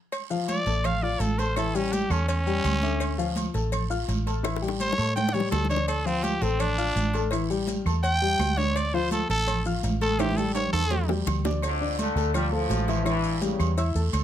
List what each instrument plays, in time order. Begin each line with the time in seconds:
0.12 cowbell, high conga, low agogo, long guiro, claves, maracas
0.30 grand piano F3 F4 F5, high conga, maracas
0.48 trumpet D5, cowbell, high conga, low agogo, short guiro, maracas
0.66 fingered electric bass A1, grand piano A3 A4 A5, cowbell, high conga, short guiro, maracas
0.84 trumpet F5, cowbell, high conga, low conga, low agogo, long guiro, claves, maracas
1.02 grand piano F4 F5 F6, trumpet D5, high conga
1.20 fingered electric bass A1, trumpet A4, cowbell, high conga, low agogo, short guiro, maracas
1.38 grand piano A3 A4 A5, trumpet C5, cowbell, low agogo, short guiro, maracas
1.56 grand piano E3 E4 E5, trumpet A4, cowbell, high conga, low agogo, long guiro, claves, maracas
1.74 grand piano G3 G4 G5, trumpet C#4, high conga, low agogo, maracas
1.93 trumpet G4, cowbell, high conga, short guiro, maracas
2.10 fingered electric bass E2, grand piano A3 A4 A5, trumpet C#4, low agogo, short guiro, claves, maracas
2.28 trumpet C#4, cowbell, high conga, low agogo, long guiro, maracas
2.46 grand piano G3 G4 G5, high conga, maracas
2.64 fingered electric bass D2, cowbell, high conga, low agogo, short guiro, claves, maracas
2.82 grand piano D3 E5 D6, cowbell, high conga, short guiro, maracas
3.00 cowbell, high conga, low agogo, long guiro, claves, maracas
3.18 grand piano F3 F4 F5, high conga, maracas
3.36 cowbell, high conga, low agogo, short guiro, maracas
3.54 fingered electric bass A1, grand piano A3 A4 A5, cowbell, high conga, short guiro, maracas
3.72 cowbell, high conga, low conga, low agogo, long guiro, claves, maracas
3.90 grand piano F4 F5 F6, maracas
4.08 fingered electric bass A1, cowbell, high conga, low agogo, short guiro, maracas
4.26 grand piano A3 A4 A5, cowbell, low agogo, short guiro, maracas
4.43 grand piano E3 E4 E5, cowbell, high bongo, low agogo, long guiro, claves, maracas
4.56 high bongo
4.62 grand piano G3 G4 G5, high conga, low agogo, maracas
4.68 high bongo
4.80 trumpet C#5, cowbell, high conga, short guiro, maracas
4.93 low bongo
4.98 fingered electric bass A2, grand piano A3 A4 A5, high conga, low agogo, short guiro, claves, maracas
5.15 trumpet G5, cowbell, low bongo, high conga, low agogo, long guiro, maracas
5.29 low bongo
5.33 grand piano G3 G4 G5, trumpet C#5, low conga, maracas
5.40 low bongo
5.51 fingered electric bass D2, trumpet A4, cowbell, low bongo, low conga, low timbale, low agogo, short guiro, claves, maracas
5.65 low bongo
5.69 grand piano D4 D5 D6, trumpet C#5, cowbell, low conga, short guiro, maracas
5.76 low bongo
5.87 trumpet A4, cowbell, high conga, low agogo, long guiro, claves, maracas
6.05 grand piano F3 F4 F5, trumpet C4, high conga, maracas
6.24 trumpet G4, cowbell, high conga, low agogo, short guiro, maracas
6.41 fingered electric bass A1, grand piano A3 A4 A5, trumpet C4, cowbell, high conga, short guiro, maracas
6.59 trumpet D4, cowbell, high conga, low conga, low agogo, long guiro, claves, maracas
6.78 grand piano F4 F5 F6, high conga, maracas
6.95 fingered electric bass A1, cowbell, high conga, low agogo, short guiro, maracas
7.14 grand piano A3 A4 A5, cowbell, low agogo, short guiro, maracas
7.31 grand piano E3 E4 E5, cowbell, low agogo, long guiro, claves, maracas
7.49 grand piano G3 G4 G5, high conga, low agogo, maracas
7.67 cowbell, high conga, short guiro, maracas
7.85 fingered electric bass E2, grand piano A3 A4 A5, high conga, low agogo, short guiro, claves, maracas
8.03 trumpet G5, cowbell, high conga, low agogo, long guiro, maracas
8.22 grand piano G3 G4 G5, high conga, maracas
8.39 fingered electric bass D2, cowbell, high conga, low timbale, low agogo, short guiro, claves, maracas
8.57 grand piano D4 D5 D6, trumpet C#5, cowbell, high conga, short guiro, maracas
8.76 trumpet D5, cowbell, high conga, low agogo, long guiro, claves, maracas
8.94 grand piano F3 F4 F5, trumpet C5
9.11 trumpet A4, cowbell, high conga, low agogo, short guiro, maracas
9.29 fingered electric bass A1, grand piano A3 A4 A5, trumpet A4, cowbell, high conga, short guiro, maracas
9.47 cowbell, high conga, low conga, low agogo, long guiro, claves, maracas
9.65 grand piano F4 F5 F6, high conga, low conga, maracas
9.83 fingered electric bass A1, cowbell, high conga, low agogo, short guiro, maracas
10.01 grand piano A3 A4 A5, trumpet A4, cowbell, high conga, low agogo, short guiro, maracas
10.19 grand piano E3 E4 E5, trumpet G4, cowbell, high conga, high timbale, low agogo, long guiro, claves, maracas
10.31 high conga
10.37 grand piano G3 G4 G5, trumpet A4, low agogo, maracas
10.55 trumpet C#5, cowbell, high timbale, short guiro, maracas
10.67 low conga
10.73 fingered electric bass E2, grand piano A3 A4 A5, trumpet A4, high timbale, low agogo, short guiro, claves, maracas
10.79 low conga
10.90 cowbell, low conga, low timbale, low agogo, long guiro, maracas
11.04 low conga
11.08 grand piano G3 G4 G5, high bongo, low timbale
11.26 fingered electric bass D2, cowbell, low bongo, low conga, low agogo, short guiro, claves, maracas
11.39 low conga
11.45 grand piano D4 D5 D6, cowbell, low bongo, low timbale, short guiro, maracas
11.51 low conga
11.62 trombone section F2 D3, cowbell, high conga, low agogo, long guiro, claves, maracas
11.81 grand piano D4 D5 D6, high conga
11.99 trombone section D3 A3, cowbell, high conga, low agogo, short guiro, maracas
12.15 fingered electric bass D2, grand piano A3 A4 A5, cowbell, high conga, short guiro, maracas
12.34 trombone section D3 G3, grand piano F4 F5 F6, cowbell, high conga, low conga, low agogo, long guiro, claves, maracas
12.52 trombone section A2 F3, grand piano A3 A4 A5, high conga
12.69 fingered electric bass A1, cowbell, high conga, low timbale, low agogo, short guiro, maracas
12.88 grand piano E3 E4 E5, cowbell, low agogo, short guiro, maracas
13.05 trombone section G2 E3, grand piano E3 E4 E5, cowbell, high conga, low agogo, long guiro, claves, maracas
13.24 high conga, low agogo, maracas
13.41 trombone section E2 C#3, grand piano G3 G4 G5, cowbell, high conga, short guiro, maracas
13.59 fingered electric bass E2, low agogo, short guiro, claves, maracas
13.77 grand piano E4 E5 E6, cowbell, high conga, low agogo, long guiro, maracas
13.95 fingered electric bass E2, grand piano A3 A4 A5, maracas
14.13 fingered electric bass D2, cowbell, high conga, low agogo, short guiro, claves, maracas